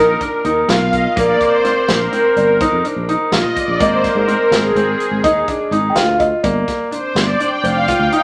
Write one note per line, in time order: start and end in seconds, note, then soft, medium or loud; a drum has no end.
0.00 0.15 A#1 medium
0.00 0.18 D#4 medium
0.00 0.18 A#4 medium
0.21 0.42 D4 medium
0.21 kick medium
0.21 closed hi-hat medium
0.45 0.63 D#2 medium
0.45 0.66 D#4 medium
0.45 closed hi-hat medium
0.68 1.05 B1 medium
0.68 1.11 F4 medium
0.68 0.93 F5 loud
0.68 snare loud
0.68 closed hi-hat medium
0.91 1.03 D#5 medium
0.91 kick medium
0.91 closed hi-hat medium
1.14 1.35 A#1 loud
1.14 1.59 A#3 medium
1.14 2.40 A#4 medium
1.14 1.40 D5 medium
1.14 kick loud
1.14 closed hi-hat medium
1.39 1.89 C5 medium
1.39 kick medium
1.39 closed hi-hat medium
1.64 2.07 C4 medium
1.64 snare soft
1.64 closed hi-hat medium
1.87 2.07 A#1 medium
1.87 2.56 A#4 medium
1.87 snare medium
1.87 closed hi-hat medium
2.12 2.55 C4 medium
2.12 closed hi-hat medium
2.36 2.64 G1 medium
2.36 2.59 D5 medium
2.36 closed hi-hat medium
2.61 2.82 D#4 medium
2.61 3.84 C5 medium
2.61 kick loud
2.61 closed hi-hat medium
2.72 2.81 F2 medium
2.85 3.06 D4 medium
2.85 closed hi-hat medium
2.96 3.15 A#1 medium
3.09 3.30 D#4 medium
3.09 closed hi-hat medium
3.32 3.41 A#1 medium
3.32 3.75 F4 medium
3.32 3.57 D#5 medium
3.32 snare loud
3.32 closed hi-hat medium
3.44 3.53 A#2 medium
3.56 3.81 D5 medium
3.56 kick medium
3.56 closed hi-hat medium
3.68 3.77 A#1 medium
3.80 4.08 G#1 loud
3.80 4.23 A#3 medium
3.80 4.03 C5 loud
3.80 4.55 D#5 medium
3.80 kick loud
3.80 closed hi-hat medium
4.04 4.54 A#4 medium
4.04 kick medium
4.04 snare soft
4.04 closed hi-hat medium
4.15 4.34 G#2 medium
4.28 4.71 C4 medium
4.28 closed hi-hat medium
4.51 4.70 G#1 medium
4.51 5.20 G#4 medium
4.51 5.20 C5 medium
4.51 snare loud
4.51 closed hi-hat medium
4.75 4.94 G#1 medium
4.75 5.19 C4 medium
4.75 closed hi-hat medium
5.00 closed hi-hat medium
5.11 5.21 G#1 medium
5.24 5.42 D#2 medium
5.24 5.45 D#4 medium
5.24 5.86 D#5 medium
5.24 kick loud
5.24 closed hi-hat medium
5.48 5.70 D4 medium
5.48 kick medium
5.48 closed hi-hat medium
5.71 5.90 G#1 medium
5.71 5.93 D#4 medium
5.71 closed hi-hat medium
5.90 5.96 G5 medium
5.95 6.32 D2 medium
5.95 6.39 F4 medium
5.95 6.13 F5 medium
5.95 snare medium
5.95 closed hi-hat medium
6.14 6.20 F5 medium
6.19 6.44 D#5 medium
6.19 kick medium
6.19 closed hi-hat medium
6.43 6.62 G1 loud
6.43 6.87 A#3 medium
6.43 7.67 D5 medium
6.43 kick loud
6.43 closed hi-hat medium
6.68 kick medium
6.68 snare soft
6.68 closed hi-hat medium
6.91 7.34 D4 medium
6.91 7.16 C5 medium
6.91 closed hi-hat medium
7.15 7.34 G1 loud
7.15 7.40 D5 medium
7.15 snare loud
7.15 closed hi-hat medium
7.39 7.83 D4 medium
7.39 7.64 G5 loud
7.39 closed hi-hat medium
7.63 7.91 F1 medium
7.63 8.23 C5 medium
7.63 7.89 F5 loud
7.63 closed hi-hat medium
7.88 8.10 F4 medium
7.88 8.13 G5 loud
7.88 kick medium
7.88 closed hi-hat medium
7.99 8.09 D2 medium
8.12 8.23 D#4 medium
8.12 8.23 F5 medium
8.12 closed hi-hat medium